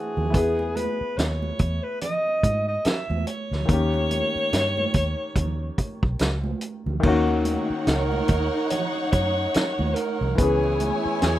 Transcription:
0.00 0.29 E3 medium
0.00 0.30 C4 medium
0.00 0.31 D4 medium
0.00 0.36 F#4 medium
0.00 0.78 G#4 medium
0.17 0.34 D#2 medium
0.17 low conga medium
0.30 0.86 E2 loud
0.30 3.64 B3 medium
0.30 3.63 E4 medium
0.30 kick loud
0.34 3.67 G#4 medium
0.34 closed hi-hat medium
0.59 muted conga soft
0.76 1.19 B4 medium
0.76 closed hi-hat medium
0.76 high conga medium
1.01 muted fingered electric bass stroke soft
1.18 1.51 D#2 medium
1.18 1.85 C#5 medium
1.18 snare medium
1.18 closed hi-hat medium
1.18 muted conga soft
1.42 muted conga soft
1.42 high conga medium
1.59 1.79 E2 medium
1.59 kick medium
1.59 closed hi-hat medium
1.83 2.01 B4 medium
2.01 2.64 D#5 loud
2.01 closed hi-hat medium
2.01 muted conga soft
2.01 low conga medium
2.27 muted conga soft
2.43 2.76 G#2 medium
2.43 kick medium
2.43 closed hi-hat medium
2.43 high conga soft
2.68 2.87 D#5 medium
2.85 3.27 E5 medium
2.85 muted fingered electric bass stroke soft
2.85 snare loud
2.85 closed hi-hat medium
3.10 3.24 E2 medium
3.10 muted conga soft
3.10 high conga medium
3.27 6.16 C#5 loud
3.27 closed hi-hat medium
3.51 3.65 D2 medium
3.51 snare soft
3.51 low conga medium
3.66 4.21 D#2 loud
3.66 6.98 D#3 medium
3.66 6.99 A#3 medium
3.66 kick loud
3.66 closed hi-hat medium
3.66 muted conga soft
3.66 low conga medium
3.70 7.01 C#4 medium
3.70 7.02 G4 medium
3.94 muted conga soft
4.11 closed hi-hat medium
4.11 high conga medium
4.36 muted fingered electric bass stroke soft
4.53 4.86 G2 medium
4.53 snare medium
4.53 closed hi-hat medium
4.77 muted conga soft
4.77 high conga medium
4.94 5.14 D#2 medium
4.94 kick medium
4.94 closed hi-hat medium
5.36 5.69 D#2 medium
5.36 kick medium
5.36 closed hi-hat medium
5.36 muted conga soft
5.36 low conga medium
5.78 kick medium
5.78 closed hi-hat medium
5.78 high conga soft
6.03 6.17 B1 medium
6.03 kick medium
6.19 6.53 C#2 medium
6.19 snare loud
6.19 closed hi-hat medium
6.44 muted conga soft
6.44 high conga medium
6.61 closed hi-hat medium
6.86 7.00 D2 medium
6.86 low conga medium
7.00 7.56 D#2 loud
7.00 10.32 D#3 medium
7.00 10.34 A#3 medium
7.00 10.34 D#4 medium
7.00 10.34 C#5 medium
7.00 10.34 F#5 medium
7.00 kick loud
7.00 crash medium
7.05 10.35 C#4 medium
7.05 10.36 F#4 medium
7.28 muted conga soft
7.45 closed hi-hat medium
7.45 high conga medium
7.70 muted fingered electric bass stroke soft
7.87 8.20 C#2 medium
7.87 8.67 A#4 loud
7.87 snare medium
7.87 closed hi-hat medium
8.12 high conga medium
8.28 8.48 D#2 medium
8.28 kick medium
8.28 closed hi-hat medium
8.70 9.10 C#5 loud
8.70 closed hi-hat medium
8.70 muted conga soft
8.70 low conga medium
8.96 muted conga soft
9.12 9.46 F#2 medium
9.12 9.96 C#5 loud
9.12 kick medium
9.12 closed hi-hat medium
9.12 high conga soft
9.54 muted fingered electric bass stroke soft
9.54 snare loud
9.54 closed hi-hat medium
9.54 muted conga soft
9.79 9.93 D#2 medium
9.79 muted conga soft
9.79 high conga medium
9.95 10.39 A#4 medium
9.95 closed hi-hat medium
10.21 10.35 C2 medium
10.21 low conga medium
10.35 10.90 C#2 loud
10.35 11.39 E3 medium
10.35 11.39 B3 medium
10.35 11.39 E4 medium
10.35 11.22 G#4 medium
10.35 11.39 C#5 medium
10.35 11.39 G#5 medium
10.35 kick loud
10.35 closed hi-hat medium
10.35 muted conga soft
10.40 11.39 C#4 medium
10.40 11.39 G#4 medium
10.63 muted conga soft
10.80 closed hi-hat medium
10.80 high conga medium
11.05 muted fingered electric bass stroke soft
11.22 11.39 E2 medium
11.22 11.38 G#4 medium
11.22 snare medium
11.22 closed hi-hat medium

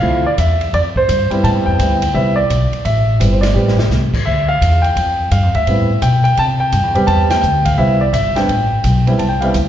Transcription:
0.00 0.36 D2 medium
0.00 0.23 F3 medium
0.00 0.23 A3 medium
0.00 0.23 C4 medium
0.00 0.23 E4 medium
0.00 0.26 F5 loud
0.26 0.31 D5 medium
0.38 0.72 E2 medium
0.38 0.71 E5 medium
0.38 kick soft
0.38 hi-hat pedal medium
0.38 ride medium
0.61 ride soft
0.73 1.07 F2 medium
0.73 0.79 D5 medium
0.73 kick soft
0.73 ride medium
0.96 1.29 C5 loud
0.96 kick soft
1.09 1.30 G2 medium
1.09 kick soft
1.09 hi-hat pedal medium
1.09 ride medium
1.30 1.76 G3 medium
1.30 1.76 B3 medium
1.30 1.77 C4 medium
1.30 1.77 E4 medium
1.30 muted upright bass stroke soft
1.30 ride soft
1.44 1.55 A2 medium
1.44 1.49 A5 medium
1.44 kick soft
1.44 ride medium
1.55 1.66 G2 medium
1.66 1.78 E2 medium
1.66 2.15 G5 medium
1.79 2.13 D2 medium
1.79 1.99 G3 medium
1.79 2.00 B3 soft
1.79 2.00 C4 soft
1.79 2.00 E4 medium
1.79 kick soft
1.79 hi-hat pedal medium
1.79 ride medium
2.02 ride medium
2.14 2.49 C2 medium
2.14 2.34 G3 medium
2.14 2.35 B3 soft
2.14 2.35 C4 medium
2.14 2.35 E4 medium
2.14 2.38 E5 medium
2.14 kick soft
2.36 2.81 D5 medium
2.50 2.71 B1 medium
2.50 kick soft
2.50 hi-hat pedal medium
2.50 ride medium
2.72 muted upright bass stroke soft
2.72 ride soft
2.85 3.19 A1 medium
2.85 3.18 E5 medium
2.85 kick soft
2.85 ride medium
3.19 3.53 G1 medium
3.19 3.40 G3 soft
3.19 3.40 B3 medium
3.19 3.40 C4 soft
3.19 3.41 E4 medium
3.19 kick soft
3.19 hi-hat pedal medium
3.19 ride medium
3.33 3.42 C5 medium
3.41 3.86 D5 medium
3.41 snare medium
3.41 ride medium
3.54 3.89 A1 medium
3.54 3.75 G3 medium
3.54 3.75 B3 medium
3.54 3.76 C4 medium
3.54 3.76 G4 medium
3.68 snare medium
3.79 snare medium
3.89 4.11 C2 medium
3.89 snare medium
3.89 hi-hat pedal soft
4.13 muted upright bass stroke soft
4.13 kick medium
4.13 crash medium
4.25 4.60 D2 medium
4.25 4.49 E5 medium
4.25 kick soft
4.48 4.85 F5 loud
4.61 4.95 E2 medium
4.61 kick soft
4.61 hi-hat pedal soft
4.61 ride medium
4.82 5.27 G5 medium
4.82 ride soft
4.96 5.30 F2 medium
4.96 kick soft
4.96 ride medium
5.31 5.43 G2 medium
5.31 5.53 F5 medium
5.31 kick soft
5.31 hi-hat pedal soft
5.31 ride medium
5.43 5.54 F2 medium
5.54 5.66 D2 medium
5.54 6.04 E5 medium
5.54 ride soft
5.67 6.01 A2 medium
5.67 5.87 G3 medium
5.67 5.88 B3 medium
5.67 5.88 C4 medium
5.67 5.88 E4 medium
5.67 kick soft
5.67 ride medium
6.02 6.36 B2 medium
6.02 6.22 G5 medium
6.02 kick soft
6.02 hi-hat pedal medium
6.02 ride medium
6.24 6.37 G5 medium
6.24 ride soft
6.37 6.72 C3 medium
6.37 6.44 A5 loud
6.37 kick soft
6.37 ride medium
6.60 6.93 G5 medium
6.72 6.83 G2 medium
6.72 kick soft
6.72 hi-hat pedal medium
6.72 ride medium
6.83 6.95 E2 medium
6.95 7.07 C2 medium
6.95 7.40 G3 medium
6.95 7.41 B3 medium
6.95 7.40 C4 medium
6.95 7.41 G4 medium
6.95 ride soft
7.07 7.42 E2 medium
7.07 7.28 A5 loud
7.07 kick soft
7.07 ride medium
7.30 7.67 G5 loud
7.30 snare medium
7.30 ride medium
7.43 7.77 D2 medium
7.43 hi-hat pedal medium
7.65 7.77 F5 medium
7.65 kick soft
7.65 ride medium
7.77 8.12 C2 medium
7.77 7.98 G3 medium
7.77 7.99 B3 medium
7.77 7.99 C4 medium
7.77 7.99 E4 medium
7.77 8.01 E5 medium
7.77 kick soft
8.01 8.14 D5 medium
8.13 8.48 G1 medium
8.13 8.37 E5 medium
8.13 kick soft
8.13 hi-hat pedal soft
8.13 ride medium
8.35 8.47 G3 medium
8.35 8.47 B3 medium
8.35 8.48 C4 medium
8.35 8.48 D4 medium
8.35 9.15 G5 medium
8.35 snare medium
8.35 ride soft
8.49 8.83 A1 medium
8.49 kick soft
8.49 ride medium
8.84 9.18 B1 medium
8.84 kick soft
8.84 hi-hat pedal soft
8.84 ride medium
9.07 9.18 G3 medium
9.07 9.18 B3 medium
9.07 9.19 C4 medium
9.07 9.19 E4 medium
9.07 ride soft
9.19 9.53 C2 medium
9.19 9.30 A5 medium
9.19 kick soft
9.19 ride medium
9.29 9.41 G5 medium
9.41 9.53 G3 medium
9.41 9.53 B3 medium
9.41 9.54 C4 medium
9.41 9.54 E4 medium
9.41 9.48 F5 medium
9.41 ride soft
9.48 9.54 G5 medium
9.54 9.69 D2 medium
9.54 kick soft
9.54 hi-hat pedal medium
9.54 ride medium

